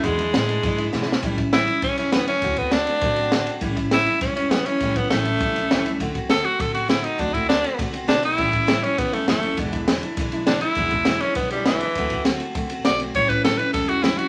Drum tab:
RD |x--x--x--x--x--x--------|x--x--x--x--x--x--x--x--|x--x--x--x--x--x--x--x--|x--x--x--x--x--x--x--x--|
SD |------o-----o-----o-o-o-|------o-----o-----o-----|------o-----------o-----|------o-----o-----o-----|
BD |o-----------o-----------|o--o--------o-----------|o--o--------o-----------|o--o--------o-----------|

RD |x--x--x--x--x--x--x--x--|x--x--x--x--x--x--x--x--|x--x--x--x--x--x--x--x--|x--x--x--x--x--x--x--x--|
SD |------o-----------o-----|------o-----------o-----|------o-----o-----o-----|------o-----o-----o-----|
BD |o--o--------o-----------|o--o--------o-----------|o--o--------o-----------|o--o--------o-----------|

RD |x--x--x--x--x--x--x--x--|x--x--x--x--x--x--x--x--|x--x--x--x--x--x--x--x--|x--x--x--x--x--x--x--x--|
SD |------o-----o-----o-----|------o-----------o-----|------o-----------o-----|------o-----o-----o-----|
BD |o--o--------o-----------|o--o--------o-----------|o--o--------o-----------|o--o--------o-----------|